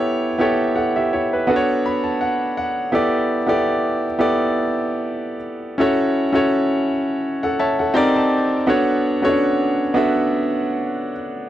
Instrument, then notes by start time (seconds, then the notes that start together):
grand piano
Already playing: B3 E4 G4 A4 C#5
0.38 B3 E4 G4 A4 C#5
0.76 A4 F#5
0.96 G4 E5
1.13 E4 C#5
1.33 B4
1.47 B3 D4 F#4 A4 B4
1.56 C#5
1.86 B5
2.04 A5
2.21 F#5
2.57 F#5
2.92 B3 E4 G4 A4 D5
3.46 B3 E4 G4 A4 D5
4.19 B3 E4 G4 A4 D5
5.78 C#4 E4 F#4 A4 C#5
6.33 C#4 E4 F#4 A4 C#5
7.43 A4 F#5
7.59 C#5 E5 A5
7.79 A4 F#5
7.94 C4 D#4 G4 A#4 D5 G5
8.16 A5
8.67 B3 D4 F#4 A4 C#5
9.22 B3 C#4 F#4 A4 C#5
9.29 D4
9.94 B3 D4 F#4 A4 E5